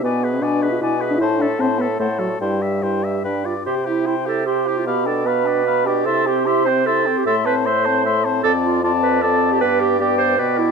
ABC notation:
X:1
M:3/4
L:1/16
Q:1/4=152
K:C
V:1 name="Flute"
^g2 e2 g2 e2 g2 e2 | a2 e2 a2 e2 ^f2 d2 | g2 e2 g2 e2 g2 d2 | g2 e2 g2 e2 g2 e2 |
b2 g2 b2 g2 b2 g2 | c'2 g2 c'2 g2 c'2 g2 | c'2 a2 c'2 a2 c'2 a2 | a4 a4 a4 |
g4 g4 g4 |]
V:2 name="Oboe"
d2 B2 d2 B2 d2 B2 | c2 A2 c2 A2 c2 A2 | c2 e2 c2 e2 B2 d2 | c2 G2 c2 G2 c2 G2 |
f2 d2 f2 d2 f2 d2 | e2 c2 e2 c2 e2 c2 | e2 c2 e2 c2 e2 c2 | d4 d4 d4 |
d4 d4 d4 |]
V:3 name="Clarinet"
B2 ^G2 B2 G2 B2 G2 | E2 A2 E2 A2 A2 ^F2 | E2 G2 E2 G2 D2 F2 | G2 E2 E2 A2 G3 F |
G2 A2 B6 G2 | A2 G2 G2 c2 A3 G | A2 B2 c6 z2 | A2 F2 F2 B2 A3 G |
B2 G2 G2 c2 B2 E2 |]
V:4 name="French horn"
B,3 C D3 F E3 D | E2 D2 C2 B,2 A,2 ^F,2 | G,8 z4 | G2 E2 G2 E2 G2 E2 |
B,2 D2 B,2 D2 B,2 D2 | E2 C2 E2 C2 E2 C2 | A,2 C2 A,2 C2 A,2 C2 | C4 C4 C4 |
B,4 B,4 B,4 |]
V:5 name="Bassoon" clef=bass
B,,4 B,,4 B,,4 | A,,4 A,,4 A,,4 | G,,4 G,,4 G,,4 | C,12 |
B,,12 | C,12 | A,,12 | F,,12 |
G,,8 B,,4 |]